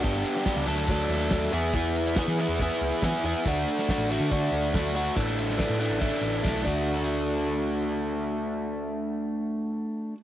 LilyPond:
<<
  \new Staff \with { instrumentName = "Overdriven electric guitar" } { \time 4/4 \key d \major \tempo 4 = 140 <b d' g'>4 <b d' g'>8 <fis a d' a'>8 <fis a d' a'>4 <fis a d' a'>8 <e b e' gis'>8 | <e b e' gis'>4 <e b e' gis'>8 <e b e' gis'>8 <e b e' gis'>4 <e b e' gis'>8 <e b e' gis'>8 | <a d' fis'>4 <a d' fis'>8 <a d' fis'>8 <a d' fis'>4 <a d' fis'>8 <a d' fis'>8 | <e a d'>4 <e a d'>8 <e a d'>8 <e a d'>4 <e a d'>8 <a d' fis'>8~ |
<a d' fis'>1~ | <a d' fis'>1 | }
  \new Staff \with { instrumentName = "Picked electric bass" } { \clef bass \time 4/4 \key d \major g,,8 r8. cis,16 d,4 ees,4 e,8~ | e,4~ e,16 e8 e,8 r16 cis,16 r16 e16 r16 e,16 r16 | d,8 r8. a,,8 d8. d,4. | a,,4~ a,,16 a,8 a,,8 r16 a,,8 b,,8 d,8~ |
d,1~ | d,1 | }
  \new DrumStaff \with { instrumentName = "Drums" } \drummode { \time 4/4 <hh bd>8 hh16 <hh sn>16 <hh bd sn>8 hh16 hh16 <hh bd>8 hh16 hh16 <hh bd sn>8 hh8 | <hh bd>8 hh16 hh16 <hh bd sn>8 hh8 <hh bd>8 hh16 hh16 <hh bd sn>8 hh8 | <hh bd>8 hh16 <hh sn>16 <hh bd sn>8 hh16 hh16 <hh bd>8 hh16 hh16 <hh bd sn>8 hh8 | <hh bd>8 hh16 <hh sn>16 <hh bd sn>8 hh8 <hh bd>8 hh16 hh16 <hh bd sn>8 <bd cymr>8 |
r4 r4 r4 r4 | r4 r4 r4 r4 | }
>>